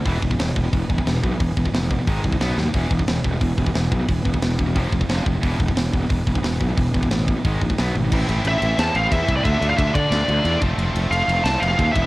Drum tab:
CC |----------------|----------------|----------------|----------------|
RD |----------------|----------------|----------------|----------------|
HH |o---o---o---o---|o---o---o---o---|o---o---o---o---|o---o---o---o---|
SD |----o-------o---|----o-------o-o-|----o-------o---|----o-------o---|
T1 |----------------|----------------|----------------|----------------|
BD |o-oo--o-o-oo--o-|o-oo--o-o-oo----|o-oo--o-o-oo--o-|o-oo--o-o-oo--o-|

CC |----------------|----------------|x---------------|----------------|
RD |----------------|----------------|--x-x-x-x-x-x-x-|x-x-x-x-x-x-x-x-|
HH |o---o---o---o---|o---o---o---o---|----------------|----------------|
SD |----o-------o---|----o-------o---|--------o-------|--------o-------|
T1 |----------------|--------------o-|----------------|----------------|
BD |o-oo--o-o-oo--o-|o-oo--o-o-oo----|o-----------o-o-|o---o-o-------o-|

CC |----------------|
RD |x-x-x-x-x-x-x-x-|
HH |----------------|
SD |--------o-------|
T1 |----------------|
BD |------------o-o-|